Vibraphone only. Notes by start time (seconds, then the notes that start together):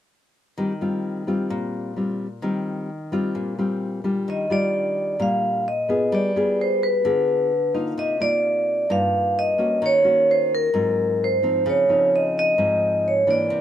4.30 D#5
4.52 D5
5.22 F5
5.68 D#5
6.15 D5
6.61 C5
6.83 B4
7.99 D#5
8.22 D5
8.92 F5
9.39 D#5
9.86 C#5
10.31 C5
10.55 A#4
11.24 C5
11.69 C#5
12.16 D#5
12.39 D#5
13.08 C#5
13.31 D5